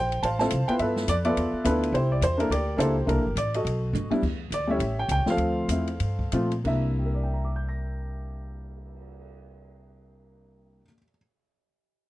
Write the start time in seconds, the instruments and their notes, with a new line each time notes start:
Already playing: upright bass A#1, grand piano C5 G5
0.12 ride
0.23 upright bass A1, grand piano C5 F5 A5, ride
0.39 grand piano C4 E4 F4 A4 C5 F5 A5, snare
0.50 upright bass C2, hi-hat pedal, ride
0.68 grand piano B3 E4 F4 B4 G5, muted upright bass stroke, ride
0.79 upright bass G2, grand piano A4 B4 E5, ride
0.96 snare
1.08 upright bass F2, grand piano D5, hi-hat pedal, ride
1.25 grand piano B3 F4 A4 B4 D5 E5, ride
1.37 upright bass E2, ride
1.53 muted upright bass stroke
1.64 upright bass D2, grand piano B3 D4 E4 F4 A4 B4, hi-hat pedal, ride
1.83 ride
1.92 upright bass C2, grand piano E4 G4 C5, ride
2.12 grand piano D5
2.21 upright bass E2, grand piano C5, hi-hat pedal, ride
2.37 grand piano A#3 D4 E4 A4 A#4, ride
2.50 upright bass D2, grand piano G4 A#4 D5, ride
2.77 upright bass C#2, grand piano A#3 D4 E4 G4 A4 C5, hi-hat pedal, ride
3.06 upright bass C2, grand piano A#3 D4 E4 A4 A#4, ride
3.17 upright bass A#1
3.27 upright bass G1
3.36 upright bass A1, grand piano D5, hi-hat pedal, ride
3.54 grand piano F#4 A4 D#5, ride
3.65 upright bass B1, ride
3.93 upright bass G1, hi-hat pedal, high tom
4.10 grand piano G3 B3 D4 E4, muted upright bass stroke, high tom
4.23 upright bass E2, kick, crash
4.50 upright bass D2, grand piano D5, hi-hat pedal, ride
4.67 grand piano G3 A3 C#4 E4 G4 C#5 E5
4.79 upright bass A1, ride
4.99 grand piano G5
5.09 upright bass C#2, grand piano G5, hi-hat pedal, ride
5.26 grand piano F3 A3 C4 F4, muted upright bass stroke, snare
5.30 grand piano A4 C5 F5
5.37 upright bass D2, ride
5.68 upright bass E2, grand piano F3 A3 C4 E4, hi-hat pedal, ride
5.87 ride
6.00 upright bass G2, ride
6.19 kick
6.32 upright bass A#2, grand piano F3 A3 C4 F4, hi-hat pedal, ride
6.51 ride
6.64 upright bass C2, grand piano C3 A#3 D4 E4 E5, kick, crash
6.85 cymbal swell
6.99 grand piano G4
7.06 grand piano A#4
7.14 grand piano D5
7.24 grand piano G5
7.34 grand piano A#5
7.45 grand piano D6
7.56 grand piano G6
7.69 grand piano A#6